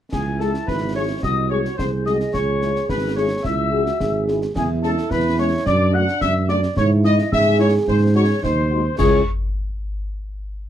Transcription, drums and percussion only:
0.12 concert bass drum medium
0.12 snare medium
0.12 crash soft
0.40 snare soft
0.54 snare medium
0.68 concert bass drum medium
0.68 snare medium
1.23 concert bass drum medium
1.23 snare medium
1.65 snare medium
1.79 concert bass drum medium
1.79 snare medium
2.06 snare soft
2.20 snare soft
2.34 concert bass drum medium
2.34 snare medium
2.62 snare soft
2.76 snare soft
2.89 concert bass drum medium
2.89 snare medium
3.45 concert bass drum medium
3.45 snare medium
3.86 snare medium
4.00 concert bass drum medium
4.00 snare medium
4.28 snare medium
4.42 snare soft
4.56 concert bass drum medium
4.56 snare medium
4.56 crash soft
4.83 snare medium
4.98 snare medium
5.11 concert bass drum medium
5.11 snare medium
5.66 concert bass drum medium
5.66 snare medium
6.08 snare medium
6.21 concert bass drum medium
6.21 snare medium
6.49 snare soft
6.63 snare medium
6.77 concert bass drum medium
6.77 snare medium
7.04 snare medium
7.18 snare medium
7.33 concert bass drum medium
7.33 snare medium
7.88 concert bass drum medium
7.88 snare medium
8.44 concert bass drum medium
8.44 snare medium
8.99 concert bass drum medium
8.99 snare medium
8.99 crash medium

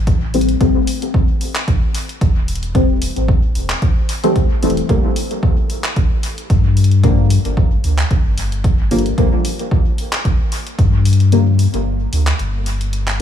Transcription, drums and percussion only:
0.07 kick loud
0.07 closed hi-hat medium
0.34 open hi-hat medium
0.41 closed hi-hat medium
0.49 closed hi-hat soft
0.61 kick loud
0.61 closed hi-hat medium
0.87 open hi-hat medium
1.02 closed hi-hat soft
1.14 kick loud
1.41 open hi-hat medium
1.56 clap medium
1.56 closed hi-hat soft
1.68 kick loud
1.68 closed hi-hat medium
1.95 open hi-hat medium
2.09 closed hi-hat soft
2.21 kick loud
2.21 closed hi-hat medium
2.48 open hi-hat medium
2.55 closed hi-hat soft
2.63 closed hi-hat soft
2.75 kick loud
2.75 closed hi-hat soft
3.02 open hi-hat medium
3.16 closed hi-hat soft
3.28 kick loud
3.55 open hi-hat medium
3.70 clap medium
3.70 closed hi-hat soft
3.82 kick loud
3.82 closed hi-hat soft
4.09 open hi-hat medium
4.24 closed hi-hat soft
4.36 kick loud
4.36 closed hi-hat soft
4.63 open hi-hat medium
4.70 closed hi-hat soft
4.77 closed hi-hat soft
4.89 kick loud
4.89 closed hi-hat soft
5.16 open hi-hat medium
5.31 closed hi-hat soft
5.43 kick loud
5.70 open hi-hat medium
5.84 clap medium
5.84 closed hi-hat soft
5.96 kick loud
5.96 closed hi-hat soft
6.23 open hi-hat medium
6.38 closed hi-hat soft
6.50 kick loud
6.50 closed hi-hat soft
6.77 open hi-hat medium
6.84 closed hi-hat soft
6.91 closed hi-hat soft
7.04 kick loud
7.04 closed hi-hat soft
7.30 open hi-hat medium
7.45 closed hi-hat soft
7.57 kick loud
7.84 open hi-hat medium
7.99 clap medium
7.99 closed hi-hat soft
8.11 kick loud
8.11 closed hi-hat soft
8.38 open hi-hat medium
8.52 closed hi-hat soft
8.64 kick loud
8.64 closed hi-hat soft
8.91 open hi-hat medium
8.98 closed hi-hat soft
9.06 closed hi-hat soft
9.18 kick loud
9.18 closed hi-hat soft
9.45 open hi-hat medium
9.59 closed hi-hat soft
9.71 kick loud
9.98 open hi-hat medium
10.13 clap medium
10.13 closed hi-hat soft
10.25 kick loud
10.25 closed hi-hat soft
10.52 open hi-hat medium
10.67 closed hi-hat soft
10.79 kick loud
10.79 closed hi-hat soft
11.05 open hi-hat medium
11.13 closed hi-hat soft
11.20 closed hi-hat soft
11.32 closed hi-hat soft
11.59 open hi-hat medium
11.74 closed hi-hat soft
12.13 open hi-hat medium
12.27 clap medium
12.27 closed hi-hat soft
12.39 closed hi-hat soft
12.66 open hi-hat medium
12.81 closed hi-hat soft
12.93 closed hi-hat medium
13.08 clap medium

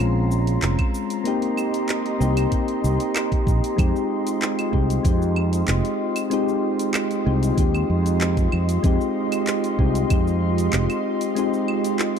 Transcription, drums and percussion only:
0.00 shaker soft
0.31 shaker medium
0.47 open hi-hat soft
0.47 shaker soft
0.62 clap loud
0.62 open hi-hat medium
0.62 shaker soft
0.79 kick medium
0.79 open hi-hat soft
0.79 claves medium
0.94 shaker medium
1.10 open hi-hat soft
1.10 shaker soft
1.25 open hi-hat medium
1.25 shaker soft
1.42 open hi-hat soft
1.57 claves medium
1.57 shaker medium
1.74 open hi-hat soft
1.74 shaker soft
1.89 clap loud
1.89 open hi-hat medium
1.89 shaker soft
2.06 open hi-hat soft
2.21 shaker medium
2.37 open hi-hat soft
2.37 claves medium
2.37 shaker soft
2.52 kick medium
2.52 open hi-hat medium
2.52 shaker soft
2.68 open hi-hat soft
2.84 shaker medium
3.00 open hi-hat soft
3.00 shaker soft
3.16 clap loud
3.16 open hi-hat medium
3.16 claves medium
3.16 shaker soft
3.32 kick medium
3.32 open hi-hat soft
3.47 kick loud
3.47 shaker medium
3.64 open hi-hat soft
3.64 shaker soft
3.78 kick loud
3.78 open hi-hat medium
3.78 claves medium
3.78 shaker medium
3.96 shaker soft
4.27 open hi-hat soft
4.27 shaker medium
4.42 clap loud
4.42 open hi-hat medium
4.42 shaker medium
4.59 open hi-hat soft
4.59 claves medium
4.59 shaker soft
4.73 kick medium
4.90 open hi-hat soft
4.90 shaker medium
5.05 kick loud
5.05 open hi-hat medium
5.05 shaker medium
5.22 shaker soft
5.36 claves medium
5.53 open hi-hat soft
5.53 shaker medium
5.68 clap loud
5.68 open hi-hat medium
5.68 shaker medium
5.85 open hi-hat soft
5.85 shaker soft
6.16 open hi-hat soft
6.16 claves medium
6.16 shaker medium
6.31 open hi-hat medium
6.31 shaker medium
6.49 shaker soft
6.79 open hi-hat soft
6.79 shaker medium
6.94 clap loud
6.94 open hi-hat medium
6.94 claves medium
6.94 shaker medium
7.11 open hi-hat soft
7.11 shaker soft
7.43 open hi-hat soft
7.43 shaker medium
7.58 kick loud
7.58 open hi-hat medium
7.58 shaker medium
7.75 claves medium
7.75 shaker soft
8.06 open hi-hat soft
8.06 shaker medium
8.21 clap loud
8.21 open hi-hat medium
8.21 shaker medium
8.37 kick loud
8.37 open hi-hat soft
8.37 shaker soft
8.52 claves medium
8.69 open hi-hat soft
8.69 shaker medium
8.84 kick loud
8.84 open hi-hat medium
8.84 shaker medium
9.01 shaker soft
9.32 open hi-hat soft
9.32 claves medium
9.32 shaker medium
9.47 clap loud
9.47 open hi-hat medium
9.47 shaker medium
9.64 open hi-hat soft
9.64 shaker soft
9.79 kick medium
9.95 open hi-hat soft
9.95 shaker medium
10.10 kick loud
10.10 open hi-hat medium
10.10 claves medium
10.10 shaker medium
10.28 shaker soft
10.58 open hi-hat soft
10.58 shaker medium
10.73 clap loud
10.73 open hi-hat medium
10.73 shaker medium
10.90 open hi-hat soft
10.90 claves medium
10.90 shaker soft
11.21 open hi-hat soft
11.21 shaker medium
11.36 open hi-hat medium
11.36 shaker medium
11.54 shaker soft
11.68 claves medium
11.84 open hi-hat soft
11.84 shaker medium
11.99 clap loud
11.99 open hi-hat medium
11.99 shaker medium

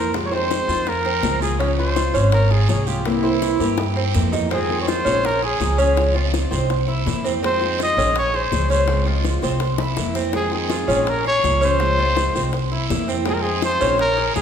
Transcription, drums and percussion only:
0.14 high bongo medium
0.14 long guiro medium
0.50 high bongo medium
0.50 short guiro medium
0.69 high bongo soft
0.69 short guiro medium
0.87 high bongo medium
0.87 long guiro medium
1.05 high bongo soft
1.23 high bongo soft
1.23 low bongo medium
1.23 short guiro medium
1.42 high bongo soft
1.42 short guiro medium
1.60 high bongo medium
1.60 long guiro medium
1.96 high bongo medium
1.96 short guiro medium
2.14 high bongo soft
2.14 short guiro medium
2.32 high bongo medium
2.32 long guiro medium
2.51 high bongo soft
2.69 high bongo soft
2.69 low bongo medium
2.69 short guiro medium
2.87 high bongo soft
2.87 short guiro medium
3.05 high bongo medium
3.05 long guiro medium
3.42 high bongo medium
3.42 short guiro medium
3.60 high bongo soft
3.60 short guiro medium
3.78 high bongo loud
3.78 long guiro medium
4.14 low bongo medium
4.14 short guiro medium
4.33 low bongo medium
4.33 short guiro medium
4.51 high bongo medium
4.51 long guiro medium
4.88 high bongo medium
4.88 short guiro medium
5.06 high bongo soft
5.06 short guiro medium
5.24 high bongo medium
5.24 long guiro medium
5.43 high bongo soft
5.60 high bongo soft
5.60 low bongo medium
5.60 short guiro medium
5.78 high bongo soft
5.78 short guiro medium
5.97 high bongo medium
5.97 long guiro medium
6.34 high bongo medium
6.34 short guiro medium
6.52 high bongo soft
6.52 short guiro medium
6.70 high bongo medium
6.70 long guiro medium
6.89 high bongo soft
7.07 high bongo soft
7.07 low bongo medium
7.07 short guiro medium
7.26 high bongo soft
7.26 short guiro medium
7.44 high bongo medium
7.44 long guiro medium
7.80 high bongo medium
7.80 short guiro medium
7.98 high bongo soft
7.98 short guiro medium
8.16 high bongo medium
8.16 long guiro medium
8.34 high bongo soft
8.52 high bongo soft
8.52 low bongo medium
8.52 short guiro medium
8.70 high bongo soft
8.70 short guiro medium
8.88 high bongo medium
8.88 long guiro medium
9.25 high bongo medium
9.25 short guiro medium
9.42 high bongo soft
9.42 short guiro medium
9.60 high bongo medium
9.60 long guiro medium
9.78 high bongo medium
9.97 high bongo medium
9.97 short guiro medium
10.15 low bongo medium
10.15 short guiro medium
10.33 high bongo medium
10.33 long guiro medium
10.70 high bongo medium
10.70 short guiro medium
10.89 high bongo soft
10.89 short guiro medium
11.07 high bongo medium
11.07 long guiro medium
11.26 high bongo soft
11.44 high bongo soft
11.44 low bongo medium
11.44 short guiro medium
11.62 high bongo soft
11.62 short guiro medium
11.80 high bongo medium
11.80 long guiro medium
12.17 high bongo medium
12.17 short guiro medium
12.35 high bongo soft
12.35 short guiro medium
12.53 high bongo medium
12.53 long guiro medium
12.72 high bongo soft
12.90 high bongo soft
12.90 low bongo medium
12.90 short guiro medium
13.09 high bongo soft
13.09 short guiro medium
13.26 high bongo medium
13.26 long guiro medium
13.62 high bongo medium
13.62 short guiro medium
13.81 high bongo soft
13.81 short guiro medium
13.98 high bongo medium
13.98 long guiro medium
14.18 high bongo soft
14.36 high bongo soft
14.36 low bongo medium
14.36 short guiro medium

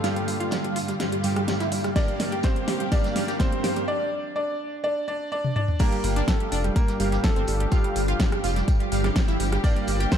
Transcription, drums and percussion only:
0.04 snare medium
0.04 closed hi-hat medium
0.04 tambourine medium
0.16 closed hi-hat soft
0.28 open hi-hat loud
0.28 tambourine medium
0.40 closed hi-hat soft
0.51 snare loud
0.51 snare medium
0.51 closed hi-hat medium
0.51 tambourine medium
0.64 closed hi-hat soft
0.76 open hi-hat loud
0.76 tambourine medium
0.88 snare soft
0.88 closed hi-hat soft
1.00 snare medium
1.00 closed hi-hat medium
1.00 tambourine medium
1.12 closed hi-hat soft
1.23 open hi-hat loud
1.23 tambourine medium
1.36 cross-stick medium
1.36 closed hi-hat soft
1.48 snare medium
1.48 snare loud
1.48 closed hi-hat medium
1.48 tambourine medium
1.60 snare medium
1.60 closed hi-hat soft
1.72 open hi-hat loud
1.72 tambourine medium
1.84 cross-stick medium
1.84 snare soft
1.84 closed hi-hat soft
1.96 kick loud
1.96 snare medium
1.96 closed hi-hat medium
1.96 tambourine medium
2.08 closed hi-hat soft
2.20 snare medium
2.20 open hi-hat loud
2.20 tambourine medium
2.32 closed hi-hat soft
2.43 kick loud
2.43 snare loud
2.43 snare medium
2.43 closed hi-hat medium
2.43 tambourine medium
2.56 closed hi-hat soft
2.68 snare medium
2.68 open hi-hat loud
2.68 tambourine medium
2.80 closed hi-hat soft
2.92 kick loud
2.92 snare medium
2.92 closed hi-hat medium
2.92 tambourine loud
3.04 snare medium
3.04 closed hi-hat soft
3.16 snare medium
3.16 open hi-hat loud
3.16 tambourine medium
3.28 snare medium
3.28 closed hi-hat soft
3.39 kick loud
3.39 snare loud
3.39 snare medium
3.39 closed hi-hat medium
3.39 tambourine medium
3.52 closed hi-hat soft
3.64 snare medium
3.64 open hi-hat loud
3.64 tambourine medium
3.76 closed hi-hat soft
5.44 high tom medium
5.56 mid tom medium
5.68 mid tom medium
5.79 kick loud
5.79 closed hi-hat medium
5.79 tambourine medium
5.79 crash loud
5.92 closed hi-hat soft
6.04 open hi-hat loud
6.04 tambourine medium
6.16 closed hi-hat soft
6.28 kick loud
6.28 snare loud
6.28 closed hi-hat medium
6.28 tambourine medium
6.40 closed hi-hat soft
6.52 open hi-hat loud
6.52 tambourine medium
6.64 closed hi-hat soft
6.76 kick loud
6.76 closed hi-hat medium
6.76 tambourine medium
6.88 snare soft
6.88 closed hi-hat soft
7.00 open hi-hat loud
7.00 tambourine medium
7.12 snare medium
7.12 closed hi-hat soft
7.24 kick loud
7.24 snare loud
7.24 closed hi-hat medium
7.24 tambourine loud
7.36 closed hi-hat soft
7.47 open hi-hat loud
7.47 tambourine medium
7.60 closed hi-hat soft
7.72 kick loud
7.72 closed hi-hat medium
7.72 tambourine medium
7.84 closed hi-hat soft
7.96 open hi-hat loud
7.96 tambourine medium
8.08 closed hi-hat soft
8.19 kick loud
8.19 snare loud
8.19 closed hi-hat medium
8.19 tambourine medium
8.32 cross-stick medium
8.32 closed hi-hat soft
8.44 open hi-hat loud
8.44 tambourine medium
8.56 snare medium
8.56 closed hi-hat soft
8.68 kick loud
8.68 closed hi-hat medium
8.68 tambourine loud
8.80 closed hi-hat soft
8.92 open hi-hat loud
8.92 tambourine medium
9.04 cross-stick medium
9.04 snare soft
9.04 closed hi-hat soft
9.16 kick loud
9.16 snare loud
9.16 closed hi-hat medium
9.16 tambourine medium
9.28 snare medium
9.28 closed hi-hat soft
9.40 open hi-hat loud
9.40 tambourine medium
9.52 cross-stick medium
9.52 snare soft
9.52 closed hi-hat soft
9.64 kick loud
9.64 closed hi-hat medium
9.64 tambourine loud
9.76 closed hi-hat soft
9.87 open hi-hat loud
9.87 tambourine medium
10.00 closed hi-hat soft
10.11 kick loud
10.11 snare loud
10.11 closed hi-hat medium
10.11 tambourine medium

